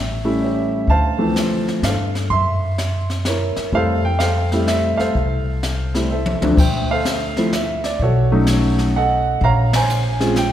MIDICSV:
0, 0, Header, 1, 5, 480
1, 0, Start_track
1, 0, Tempo, 473934
1, 895, Time_signature, 3, 2, 24, 8
1, 10659, End_track
2, 0, Start_track
2, 0, Title_t, "Grand piano"
2, 0, Program_c, 0, 0
2, 0, Note_on_c, 0, 73, 59
2, 0, Note_on_c, 0, 76, 64
2, 229, Note_off_c, 0, 76, 0
2, 232, Note_off_c, 0, 73, 0
2, 250, Note_on_c, 0, 57, 58
2, 251, Note_on_c, 0, 61, 60
2, 252, Note_on_c, 0, 55, 60
2, 255, Note_on_c, 0, 64, 74
2, 423, Note_on_c, 0, 76, 64
2, 441, Note_on_c, 0, 73, 48
2, 444, Note_on_c, 0, 67, 50
2, 861, Note_off_c, 0, 57, 0
2, 862, Note_off_c, 0, 55, 0
2, 862, Note_off_c, 0, 61, 0
2, 864, Note_off_c, 0, 64, 0
2, 876, Note_off_c, 0, 73, 0
2, 877, Note_off_c, 0, 67, 0
2, 908, Note_on_c, 0, 81, 102
2, 914, Note_off_c, 0, 76, 0
2, 919, Note_on_c, 0, 77, 70
2, 922, Note_on_c, 0, 72, 67
2, 1198, Note_on_c, 0, 53, 62
2, 1198, Note_on_c, 0, 60, 57
2, 1200, Note_on_c, 0, 57, 57
2, 1204, Note_on_c, 0, 52, 64
2, 1661, Note_off_c, 0, 81, 0
2, 1667, Note_off_c, 0, 77, 0
2, 1669, Note_off_c, 0, 72, 0
2, 1815, Note_off_c, 0, 53, 0
2, 1816, Note_off_c, 0, 60, 0
2, 1817, Note_off_c, 0, 57, 0
2, 1819, Note_off_c, 0, 52, 0
2, 1868, Note_on_c, 0, 77, 68
2, 1888, Note_on_c, 0, 69, 51
2, 1888, Note_on_c, 0, 72, 50
2, 2310, Note_off_c, 0, 77, 0
2, 2320, Note_off_c, 0, 69, 0
2, 2320, Note_off_c, 0, 72, 0
2, 2331, Note_on_c, 0, 84, 103
2, 2351, Note_on_c, 0, 76, 67
2, 3094, Note_off_c, 0, 84, 0
2, 3104, Note_off_c, 0, 76, 0
2, 3312, Note_on_c, 0, 73, 75
2, 3324, Note_on_c, 0, 70, 60
2, 3330, Note_on_c, 0, 64, 56
2, 3752, Note_off_c, 0, 73, 0
2, 3759, Note_off_c, 0, 70, 0
2, 3762, Note_off_c, 0, 64, 0
2, 3773, Note_on_c, 0, 57, 51
2, 3776, Note_on_c, 0, 55, 54
2, 3778, Note_on_c, 0, 60, 49
2, 3779, Note_on_c, 0, 64, 57
2, 3798, Note_on_c, 0, 77, 94
2, 3807, Note_on_c, 0, 72, 70
2, 3811, Note_on_c, 0, 69, 70
2, 4063, Note_off_c, 0, 57, 0
2, 4065, Note_off_c, 0, 55, 0
2, 4066, Note_off_c, 0, 60, 0
2, 4066, Note_off_c, 0, 64, 0
2, 4086, Note_off_c, 0, 77, 0
2, 4100, Note_on_c, 0, 79, 88
2, 4241, Note_on_c, 0, 77, 88
2, 4251, Note_off_c, 0, 72, 0
2, 4254, Note_off_c, 0, 69, 0
2, 4264, Note_off_c, 0, 79, 0
2, 4266, Note_on_c, 0, 72, 58
2, 4269, Note_on_c, 0, 69, 59
2, 4586, Note_on_c, 0, 57, 56
2, 4588, Note_on_c, 0, 64, 68
2, 4593, Note_on_c, 0, 60, 54
2, 4594, Note_on_c, 0, 55, 68
2, 4696, Note_off_c, 0, 77, 0
2, 4730, Note_on_c, 0, 76, 81
2, 5022, Note_off_c, 0, 72, 0
2, 5024, Note_off_c, 0, 69, 0
2, 5032, Note_off_c, 0, 76, 0
2, 5038, Note_on_c, 0, 77, 77
2, 5057, Note_on_c, 0, 69, 60
2, 5062, Note_on_c, 0, 72, 60
2, 5192, Note_off_c, 0, 57, 0
2, 5193, Note_off_c, 0, 64, 0
2, 5195, Note_off_c, 0, 55, 0
2, 5195, Note_off_c, 0, 60, 0
2, 6018, Note_on_c, 0, 57, 49
2, 6024, Note_on_c, 0, 55, 56
2, 6026, Note_on_c, 0, 64, 66
2, 6029, Note_on_c, 0, 60, 53
2, 6130, Note_off_c, 0, 77, 0
2, 6139, Note_off_c, 0, 69, 0
2, 6142, Note_off_c, 0, 72, 0
2, 6164, Note_off_c, 0, 57, 0
2, 6167, Note_off_c, 0, 55, 0
2, 6168, Note_off_c, 0, 64, 0
2, 6169, Note_off_c, 0, 60, 0
2, 6183, Note_on_c, 0, 76, 73
2, 6191, Note_on_c, 0, 72, 51
2, 6196, Note_on_c, 0, 69, 50
2, 6504, Note_on_c, 0, 53, 53
2, 6508, Note_on_c, 0, 57, 50
2, 6509, Note_on_c, 0, 38, 59
2, 6510, Note_on_c, 0, 60, 51
2, 6514, Note_on_c, 0, 62, 61
2, 6628, Note_off_c, 0, 76, 0
2, 6633, Note_off_c, 0, 72, 0
2, 6635, Note_off_c, 0, 69, 0
2, 6646, Note_off_c, 0, 53, 0
2, 6649, Note_off_c, 0, 38, 0
2, 6649, Note_off_c, 0, 57, 0
2, 6650, Note_off_c, 0, 60, 0
2, 6652, Note_off_c, 0, 62, 0
2, 6672, Note_on_c, 0, 79, 83
2, 6686, Note_on_c, 0, 72, 59
2, 6687, Note_on_c, 0, 76, 66
2, 6964, Note_off_c, 0, 79, 0
2, 6998, Note_off_c, 0, 72, 0
2, 7000, Note_on_c, 0, 77, 87
2, 7009, Note_on_c, 0, 69, 58
2, 7013, Note_on_c, 0, 72, 57
2, 7433, Note_off_c, 0, 76, 0
2, 7470, Note_on_c, 0, 53, 63
2, 7474, Note_on_c, 0, 57, 59
2, 7476, Note_on_c, 0, 60, 61
2, 7479, Note_on_c, 0, 64, 68
2, 7590, Note_off_c, 0, 77, 0
2, 7595, Note_off_c, 0, 69, 0
2, 7597, Note_off_c, 0, 72, 0
2, 7610, Note_off_c, 0, 53, 0
2, 7612, Note_off_c, 0, 57, 0
2, 7613, Note_off_c, 0, 60, 0
2, 7614, Note_off_c, 0, 64, 0
2, 7639, Note_on_c, 0, 76, 77
2, 7928, Note_off_c, 0, 76, 0
2, 7953, Note_on_c, 0, 74, 76
2, 8112, Note_off_c, 0, 74, 0
2, 8126, Note_on_c, 0, 73, 86
2, 8131, Note_on_c, 0, 66, 62
2, 8131, Note_on_c, 0, 69, 63
2, 8424, Note_on_c, 0, 57, 63
2, 8425, Note_on_c, 0, 54, 71
2, 8426, Note_on_c, 0, 63, 74
2, 8430, Note_on_c, 0, 61, 64
2, 9030, Note_off_c, 0, 57, 0
2, 9031, Note_off_c, 0, 54, 0
2, 9031, Note_off_c, 0, 63, 0
2, 9032, Note_off_c, 0, 73, 0
2, 9033, Note_off_c, 0, 61, 0
2, 9035, Note_off_c, 0, 66, 0
2, 9035, Note_off_c, 0, 69, 0
2, 9078, Note_on_c, 0, 78, 96
2, 9084, Note_on_c, 0, 75, 65
2, 9088, Note_on_c, 0, 69, 62
2, 9516, Note_off_c, 0, 78, 0
2, 9519, Note_off_c, 0, 75, 0
2, 9521, Note_off_c, 0, 69, 0
2, 9558, Note_on_c, 0, 82, 99
2, 9566, Note_on_c, 0, 77, 78
2, 9568, Note_on_c, 0, 73, 77
2, 9628, Note_off_c, 0, 82, 0
2, 9864, Note_off_c, 0, 73, 0
2, 9879, Note_on_c, 0, 73, 69
2, 9881, Note_on_c, 0, 80, 95
2, 9882, Note_on_c, 0, 72, 70
2, 10310, Note_off_c, 0, 77, 0
2, 10333, Note_on_c, 0, 56, 64
2, 10338, Note_on_c, 0, 61, 57
2, 10341, Note_on_c, 0, 60, 62
2, 10341, Note_on_c, 0, 65, 70
2, 10468, Note_off_c, 0, 73, 0
2, 10469, Note_off_c, 0, 72, 0
2, 10469, Note_off_c, 0, 80, 0
2, 10480, Note_off_c, 0, 56, 0
2, 10482, Note_off_c, 0, 61, 0
2, 10484, Note_off_c, 0, 60, 0
2, 10484, Note_off_c, 0, 65, 0
2, 10511, Note_on_c, 0, 79, 93
2, 10659, Note_off_c, 0, 79, 0
2, 10659, End_track
3, 0, Start_track
3, 0, Title_t, "Upright bass"
3, 0, Program_c, 1, 32
3, 0, Note_on_c, 1, 33, 82
3, 854, Note_off_c, 1, 33, 0
3, 885, Note_on_c, 1, 38, 72
3, 1810, Note_off_c, 1, 38, 0
3, 1847, Note_on_c, 1, 43, 74
3, 2298, Note_off_c, 1, 43, 0
3, 2332, Note_on_c, 1, 42, 80
3, 3575, Note_off_c, 1, 42, 0
3, 3773, Note_on_c, 1, 41, 81
3, 5016, Note_off_c, 1, 41, 0
3, 5212, Note_on_c, 1, 36, 75
3, 6456, Note_off_c, 1, 36, 0
3, 6494, Note_on_c, 1, 37, 61
3, 6646, Note_off_c, 1, 37, 0
3, 6655, Note_on_c, 1, 38, 78
3, 8058, Note_off_c, 1, 38, 0
3, 8095, Note_on_c, 1, 35, 82
3, 9496, Note_off_c, 1, 35, 0
3, 9529, Note_on_c, 1, 34, 92
3, 10659, Note_off_c, 1, 34, 0
3, 10659, End_track
4, 0, Start_track
4, 0, Title_t, "Muted upright bass strokes"
4, 3616, Note_on_c, 9, 29, 37
4, 3717, Note_off_c, 9, 29, 0
4, 5060, Note_on_c, 9, 29, 35
4, 5162, Note_off_c, 9, 29, 0
4, 10659, End_track
5, 0, Start_track
5, 0, Title_t, "Drums"
5, 890, Note_on_c, 9, 36, 30
5, 898, Note_on_c, 9, 25, 41
5, 991, Note_off_c, 9, 36, 0
5, 1376, Note_on_c, 9, 38, 52
5, 1379, Note_on_c, 9, 44, 55
5, 1478, Note_off_c, 9, 38, 0
5, 1480, Note_off_c, 9, 44, 0
5, 1704, Note_on_c, 9, 38, 35
5, 1805, Note_off_c, 9, 38, 0
5, 1855, Note_on_c, 9, 38, 58
5, 1857, Note_on_c, 9, 44, 55
5, 1957, Note_off_c, 9, 38, 0
5, 1959, Note_off_c, 9, 44, 0
5, 2179, Note_on_c, 9, 38, 33
5, 2280, Note_off_c, 9, 38, 0
5, 2333, Note_on_c, 9, 36, 30
5, 2337, Note_off_c, 9, 25, 0
5, 2337, Note_on_c, 9, 25, 44
5, 2434, Note_off_c, 9, 36, 0
5, 2819, Note_on_c, 9, 38, 50
5, 2821, Note_on_c, 9, 44, 47
5, 2920, Note_off_c, 9, 38, 0
5, 2922, Note_off_c, 9, 44, 0
5, 3137, Note_on_c, 9, 38, 35
5, 3239, Note_off_c, 9, 38, 0
5, 3292, Note_on_c, 9, 38, 54
5, 3294, Note_on_c, 9, 44, 54
5, 3394, Note_off_c, 9, 38, 0
5, 3396, Note_off_c, 9, 44, 0
5, 3609, Note_on_c, 9, 38, 31
5, 3710, Note_off_c, 9, 38, 0
5, 3770, Note_off_c, 9, 25, 0
5, 3770, Note_on_c, 9, 25, 50
5, 3772, Note_on_c, 9, 36, 33
5, 3873, Note_off_c, 9, 36, 0
5, 4252, Note_on_c, 9, 38, 51
5, 4254, Note_on_c, 9, 44, 47
5, 4354, Note_off_c, 9, 38, 0
5, 4356, Note_off_c, 9, 44, 0
5, 4576, Note_on_c, 9, 38, 34
5, 4677, Note_off_c, 9, 38, 0
5, 4736, Note_on_c, 9, 38, 59
5, 4738, Note_on_c, 9, 44, 62
5, 4838, Note_off_c, 9, 38, 0
5, 4840, Note_off_c, 9, 44, 0
5, 5059, Note_on_c, 9, 38, 30
5, 5160, Note_off_c, 9, 38, 0
5, 5217, Note_off_c, 9, 25, 0
5, 5217, Note_on_c, 9, 25, 41
5, 5217, Note_on_c, 9, 36, 31
5, 5318, Note_off_c, 9, 36, 0
5, 5702, Note_on_c, 9, 38, 52
5, 5704, Note_on_c, 9, 44, 47
5, 5803, Note_off_c, 9, 38, 0
5, 5805, Note_off_c, 9, 44, 0
5, 6022, Note_on_c, 9, 38, 37
5, 6123, Note_off_c, 9, 38, 0
5, 6338, Note_on_c, 9, 48, 51
5, 6439, Note_off_c, 9, 48, 0
5, 6502, Note_on_c, 9, 48, 61
5, 6604, Note_off_c, 9, 48, 0
5, 6659, Note_on_c, 9, 36, 71
5, 6665, Note_off_c, 9, 25, 0
5, 6665, Note_on_c, 9, 25, 50
5, 6665, Note_on_c, 9, 49, 69
5, 6761, Note_off_c, 9, 36, 0
5, 6766, Note_off_c, 9, 49, 0
5, 7143, Note_on_c, 9, 38, 57
5, 7145, Note_on_c, 9, 44, 51
5, 7244, Note_off_c, 9, 38, 0
5, 7246, Note_off_c, 9, 44, 0
5, 7461, Note_on_c, 9, 38, 36
5, 7562, Note_off_c, 9, 38, 0
5, 7622, Note_on_c, 9, 38, 60
5, 7624, Note_on_c, 9, 44, 55
5, 7724, Note_off_c, 9, 38, 0
5, 7726, Note_off_c, 9, 44, 0
5, 7939, Note_on_c, 9, 38, 34
5, 8041, Note_off_c, 9, 38, 0
5, 8098, Note_on_c, 9, 36, 35
5, 8103, Note_off_c, 9, 25, 0
5, 8103, Note_on_c, 9, 25, 53
5, 8199, Note_off_c, 9, 36, 0
5, 8574, Note_on_c, 9, 38, 57
5, 8576, Note_on_c, 9, 44, 48
5, 8676, Note_off_c, 9, 38, 0
5, 8678, Note_off_c, 9, 44, 0
5, 8899, Note_on_c, 9, 38, 42
5, 9000, Note_off_c, 9, 38, 0
5, 9533, Note_off_c, 9, 25, 0
5, 9533, Note_on_c, 9, 25, 45
5, 9533, Note_on_c, 9, 36, 33
5, 9635, Note_off_c, 9, 36, 0
5, 9857, Note_on_c, 9, 38, 84
5, 9859, Note_on_c, 9, 51, 66
5, 9958, Note_off_c, 9, 38, 0
5, 9960, Note_off_c, 9, 51, 0
5, 10021, Note_on_c, 9, 44, 53
5, 10123, Note_off_c, 9, 44, 0
5, 10335, Note_on_c, 9, 38, 41
5, 10436, Note_off_c, 9, 38, 0
5, 10490, Note_on_c, 9, 38, 59
5, 10492, Note_on_c, 9, 44, 55
5, 10591, Note_off_c, 9, 38, 0
5, 10593, Note_off_c, 9, 44, 0
5, 10659, Note_off_c, 9, 25, 0
5, 10659, End_track
0, 0, End_of_file